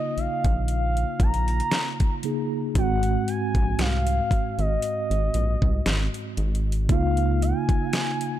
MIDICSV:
0, 0, Header, 1, 5, 480
1, 0, Start_track
1, 0, Key_signature, -5, "major"
1, 0, Tempo, 1034483
1, 1279, Time_signature, 4, 2, 24, 8
1, 3895, End_track
2, 0, Start_track
2, 0, Title_t, "Soft synth lead"
2, 0, Program_c, 0, 80
2, 0, Note_on_c, 0, 75, 112
2, 86, Note_on_c, 0, 77, 108
2, 93, Note_off_c, 0, 75, 0
2, 322, Note_off_c, 0, 77, 0
2, 325, Note_on_c, 0, 77, 112
2, 567, Note_on_c, 0, 82, 127
2, 574, Note_off_c, 0, 77, 0
2, 1043, Note_off_c, 0, 82, 0
2, 1285, Note_on_c, 0, 78, 115
2, 1524, Note_on_c, 0, 80, 113
2, 1531, Note_off_c, 0, 78, 0
2, 1763, Note_on_c, 0, 77, 115
2, 1770, Note_off_c, 0, 80, 0
2, 2133, Note_on_c, 0, 75, 96
2, 2140, Note_off_c, 0, 77, 0
2, 2961, Note_off_c, 0, 75, 0
2, 3204, Note_on_c, 0, 77, 100
2, 3446, Note_on_c, 0, 80, 110
2, 3453, Note_off_c, 0, 77, 0
2, 3895, Note_off_c, 0, 80, 0
2, 3895, End_track
3, 0, Start_track
3, 0, Title_t, "Tine electric piano"
3, 0, Program_c, 1, 4
3, 0, Control_c, 1, 64, 127
3, 0, Note_on_c, 1, 49, 66
3, 0, Note_on_c, 1, 58, 64
3, 0, Note_on_c, 1, 63, 64
3, 0, Note_on_c, 1, 65, 77
3, 1016, Note_off_c, 1, 49, 0
3, 1019, Note_off_c, 1, 58, 0
3, 1022, Note_off_c, 1, 63, 0
3, 1025, Note_off_c, 1, 65, 0
3, 1036, Note_on_c, 1, 49, 53
3, 1040, Note_on_c, 1, 58, 46
3, 1043, Note_on_c, 1, 63, 46
3, 1046, Note_on_c, 1, 68, 54
3, 1272, Note_on_c, 1, 44, 64
3, 1277, Note_off_c, 1, 49, 0
3, 1279, Note_off_c, 1, 58, 0
3, 1279, Note_on_c, 1, 56, 62
3, 1281, Note_off_c, 1, 63, 0
3, 1282, Note_off_c, 1, 68, 0
3, 1285, Control_c, 1, 64, 0
3, 1286, Note_on_c, 1, 60, 64
3, 1291, Note_on_c, 1, 66, 77
3, 1374, Control_c, 1, 64, 127
3, 3177, Note_off_c, 1, 44, 0
3, 3180, Note_off_c, 1, 56, 0
3, 3184, Note_off_c, 1, 60, 0
3, 3186, Note_off_c, 1, 66, 0
3, 3192, Note_on_c, 1, 49, 67
3, 3198, Note_on_c, 1, 58, 64
3, 3204, Note_on_c, 1, 63, 62
3, 3205, Control_c, 1, 64, 0
3, 3210, Note_on_c, 1, 65, 77
3, 3279, Control_c, 1, 64, 127
3, 3895, Note_off_c, 1, 49, 0
3, 3895, Note_off_c, 1, 58, 0
3, 3895, Note_off_c, 1, 63, 0
3, 3895, Note_off_c, 1, 65, 0
3, 3895, End_track
4, 0, Start_track
4, 0, Title_t, "Analog synth bass"
4, 0, Program_c, 2, 38
4, 79, Note_on_c, 2, 34, 53
4, 130, Note_off_c, 2, 34, 0
4, 206, Note_on_c, 2, 34, 95
4, 486, Note_off_c, 2, 34, 0
4, 556, Note_on_c, 2, 34, 98
4, 748, Note_off_c, 2, 34, 0
4, 1277, Note_on_c, 2, 32, 112
4, 1469, Note_off_c, 2, 32, 0
4, 1646, Note_on_c, 2, 34, 93
4, 1735, Note_off_c, 2, 34, 0
4, 1758, Note_on_c, 2, 36, 101
4, 1949, Note_off_c, 2, 36, 0
4, 2127, Note_on_c, 2, 32, 92
4, 2216, Note_off_c, 2, 32, 0
4, 2368, Note_on_c, 2, 32, 84
4, 2456, Note_off_c, 2, 32, 0
4, 2479, Note_on_c, 2, 34, 90
4, 2582, Note_off_c, 2, 34, 0
4, 2607, Note_on_c, 2, 36, 88
4, 2696, Note_off_c, 2, 36, 0
4, 2719, Note_on_c, 2, 32, 93
4, 2822, Note_off_c, 2, 32, 0
4, 2958, Note_on_c, 2, 32, 91
4, 3199, Note_on_c, 2, 37, 105
4, 3206, Note_off_c, 2, 32, 0
4, 3493, Note_off_c, 2, 37, 0
4, 3568, Note_on_c, 2, 34, 50
4, 3612, Note_off_c, 2, 34, 0
4, 3895, End_track
5, 0, Start_track
5, 0, Title_t, "Drums"
5, 82, Note_on_c, 9, 42, 48
5, 128, Note_off_c, 9, 42, 0
5, 206, Note_on_c, 9, 42, 46
5, 207, Note_on_c, 9, 36, 104
5, 253, Note_off_c, 9, 36, 0
5, 253, Note_off_c, 9, 42, 0
5, 316, Note_on_c, 9, 42, 82
5, 363, Note_off_c, 9, 42, 0
5, 449, Note_on_c, 9, 42, 50
5, 496, Note_off_c, 9, 42, 0
5, 556, Note_on_c, 9, 36, 101
5, 556, Note_on_c, 9, 42, 58
5, 602, Note_off_c, 9, 36, 0
5, 603, Note_off_c, 9, 42, 0
5, 621, Note_on_c, 9, 42, 59
5, 667, Note_off_c, 9, 42, 0
5, 686, Note_on_c, 9, 42, 58
5, 732, Note_off_c, 9, 42, 0
5, 742, Note_on_c, 9, 42, 56
5, 788, Note_off_c, 9, 42, 0
5, 796, Note_on_c, 9, 38, 121
5, 798, Note_on_c, 9, 42, 63
5, 842, Note_off_c, 9, 38, 0
5, 845, Note_off_c, 9, 42, 0
5, 928, Note_on_c, 9, 42, 51
5, 929, Note_on_c, 9, 36, 91
5, 974, Note_off_c, 9, 42, 0
5, 975, Note_off_c, 9, 36, 0
5, 1035, Note_on_c, 9, 42, 61
5, 1081, Note_off_c, 9, 42, 0
5, 1277, Note_on_c, 9, 42, 82
5, 1278, Note_on_c, 9, 36, 123
5, 1324, Note_off_c, 9, 36, 0
5, 1324, Note_off_c, 9, 42, 0
5, 1406, Note_on_c, 9, 42, 61
5, 1452, Note_off_c, 9, 42, 0
5, 1522, Note_on_c, 9, 42, 69
5, 1568, Note_off_c, 9, 42, 0
5, 1646, Note_on_c, 9, 36, 100
5, 1647, Note_on_c, 9, 42, 45
5, 1693, Note_off_c, 9, 36, 0
5, 1694, Note_off_c, 9, 42, 0
5, 1757, Note_on_c, 9, 42, 80
5, 1759, Note_on_c, 9, 38, 102
5, 1804, Note_off_c, 9, 42, 0
5, 1806, Note_off_c, 9, 38, 0
5, 1887, Note_on_c, 9, 42, 75
5, 1933, Note_off_c, 9, 42, 0
5, 1999, Note_on_c, 9, 36, 94
5, 2003, Note_on_c, 9, 42, 51
5, 2046, Note_off_c, 9, 36, 0
5, 2049, Note_off_c, 9, 42, 0
5, 2128, Note_on_c, 9, 42, 45
5, 2174, Note_off_c, 9, 42, 0
5, 2238, Note_on_c, 9, 42, 81
5, 2285, Note_off_c, 9, 42, 0
5, 2372, Note_on_c, 9, 42, 48
5, 2418, Note_off_c, 9, 42, 0
5, 2478, Note_on_c, 9, 42, 69
5, 2525, Note_off_c, 9, 42, 0
5, 2608, Note_on_c, 9, 36, 87
5, 2654, Note_off_c, 9, 36, 0
5, 2719, Note_on_c, 9, 38, 122
5, 2721, Note_on_c, 9, 42, 64
5, 2765, Note_off_c, 9, 38, 0
5, 2768, Note_off_c, 9, 42, 0
5, 2850, Note_on_c, 9, 42, 51
5, 2897, Note_off_c, 9, 42, 0
5, 2957, Note_on_c, 9, 46, 65
5, 2960, Note_on_c, 9, 42, 37
5, 3004, Note_off_c, 9, 46, 0
5, 3006, Note_off_c, 9, 42, 0
5, 3039, Note_on_c, 9, 42, 48
5, 3085, Note_off_c, 9, 42, 0
5, 3119, Note_on_c, 9, 42, 63
5, 3166, Note_off_c, 9, 42, 0
5, 3198, Note_on_c, 9, 36, 126
5, 3198, Note_on_c, 9, 42, 83
5, 3244, Note_off_c, 9, 42, 0
5, 3245, Note_off_c, 9, 36, 0
5, 3327, Note_on_c, 9, 42, 64
5, 3374, Note_off_c, 9, 42, 0
5, 3445, Note_on_c, 9, 42, 72
5, 3491, Note_off_c, 9, 42, 0
5, 3567, Note_on_c, 9, 36, 102
5, 3569, Note_on_c, 9, 42, 46
5, 3614, Note_off_c, 9, 36, 0
5, 3616, Note_off_c, 9, 42, 0
5, 3679, Note_on_c, 9, 42, 75
5, 3681, Note_on_c, 9, 38, 101
5, 3726, Note_off_c, 9, 42, 0
5, 3728, Note_off_c, 9, 38, 0
5, 3809, Note_on_c, 9, 42, 73
5, 3855, Note_off_c, 9, 42, 0
5, 3895, End_track
0, 0, End_of_file